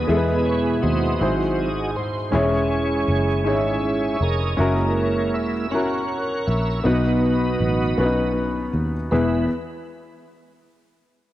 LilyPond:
<<
  \new Staff \with { instrumentName = "Tonewheel organ" } { \time 6/8 \key e \major \tempo 4. = 53 << { dis''8 cis''8 c''4 gis'8 bis'8 | cis''4. e''4 dis''8~ | dis''8 cis''8 e''8 fis''4 e''8 | dis''2 r4 |
<gis b e' b'>8 r2 r8 | } \\ { <gis' b'>4 <fis' dis''>4. r8 | <e' gis'>4. <gis' cis''>4 ais'8~ | ais'4 r8 <ais' cis''>4. | <fis' b'>2 r4 |
r2. | } >> }
  \new Staff \with { instrumentName = "Tonewheel organ" } { \time 6/8 \key e \major <b, gis e'>4. <fis bis e'>8 r4 | <gis cis'>2 <gis cis' e'>8 r8 | <gis ais e'>4. r4. | <fis b dis'>4. <fis b dis'>8 r4 |
r2. | }
  \new Staff \with { instrumentName = "Grand piano" } { \time 6/8 \key e \major <b e' gis' a' b'>4~ <b e' gis' a' b'>16 r16 <e' fis' gis' bis'>4~ <e' fis' gis' bis'>16 r16 | <cis' e' gis' cis''>4~ <cis' e' gis' cis''>16 r16 <cis' dis' e' gis' cis''>4~ <cis' dis' e' gis' cis''>16 r16 | <cis' e' fis' ais'>4~ <cis' e' fis' ais'>16 r16 <cis' e' fis' ais'>4~ <cis' e' fis' ais'>16 r16 | <b dis' fis' b'>4~ <b dis' fis' b'>16 r16 <b cis' dis' fis' b'>4~ <b cis' dis' fis' b'>16 r16 |
<b e' gis' b'>8 r2 r8 | }
  \new Staff \with { instrumentName = "Grand piano" } { \clef bass \time 6/8 \key e \major gis4. gis,4. | e4. r4. | r2. | b,4. r4. |
e,8 r2 r8 | }
  \new Staff \with { instrumentName = "Fingered electric bass" } { \clef bass \time 6/8 \key e \major e,4 dis,8 gis,,4 dis,,8 | e,,4 fis,,8 gis,,4 f,,8 | fis,,4 e,,8 fis,,4 ais,,8 | b,,4 a,,8 b,,4 dis,8 |
e,,8 r2 r8 | }
>>